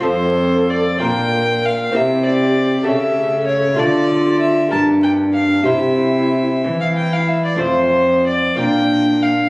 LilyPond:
<<
  \new Staff \with { instrumentName = "Violin" } { \time 6/8 \key f \major \tempo 4. = 63 c''4 d''8 g''4 f''8 | e''8 d''4 e''4 cis''8 | d''4 e''8 a''8 g''8 f''8 | e''4.~ e''16 f''16 g''16 f''16 e''16 d''16 |
c''4 d''8 g''4 f''8 | }
  \new Staff \with { instrumentName = "Flute" } { \time 6/8 \key f \major a'4. bes'4. | g'4. a'4. | f'4. d'4. | e'2~ e'16 r8. |
r4. d'4. | }
  \new Staff \with { instrumentName = "Lute" } { \time 6/8 \key f \major <c' f' a'>4. <d' f' bes'>4. | <c' e' g'>4. <a g' a'>4. | <a f' a'>4. <g' bes'>4. | <g' c''>2. |
<a f' c''>4. <bes f' d''>4. | }
  \new Staff \with { instrumentName = "Lute" } { \clef bass \time 6/8 \key f \major f,4. bes,4. | c4. cis4. | d4. g,4. | c4. e4. |
f,4. bes,4. | }
  \new Staff \with { instrumentName = "Cello" } { \clef bass \time 6/8 \key f \major f,4. bes,4. | c4. cis4. | d4. g,4. | c4. e4. |
f,4. bes,4. | }
>>